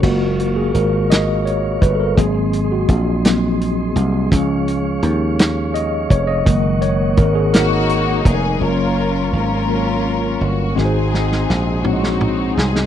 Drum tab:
CC |x-----------|------------|------------|------------|
HH |--x-x-x-x-x-|x-x-x-x-x-x-|x-x-x-x-x-x-|x-x-x-x-x-x-|
SD |------o-----|------o-----|------o-----|------o-----|
T2 |------------|------------|------------|------------|
BD |o---------o-|o---o-------|o---------o-|o---o-----o-|

CC |------------|------------|
HH |------------|------------|
SD |------------|o-ooo--o--oo|
T2 |------------|------o-o---|
BD |------------|------------|